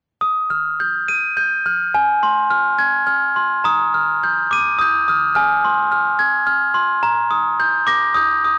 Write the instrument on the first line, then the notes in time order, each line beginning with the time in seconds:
glockenspiel
0.21 D#6
0.50 F6
0.80 G6
1.08 D#7
1.37 G6
1.66 F6
1.94 G#5
2.23 C6
2.50 F6
2.79 G#6
3.07 F6
3.36 C6
3.64 A#5 D#6
3.94 F6
4.24 G6
4.51 D6 D#7
4.79 D#6 G6
5.08 D#6 F6
5.35 G#5 F6
5.64 C6
5.92 F6
6.19 G#6
6.47 F6
6.74 C6
7.03 A#5
7.31 D#6
7.60 G6
7.87 D6 A#6
8.15 D#6 G6
8.45 D#6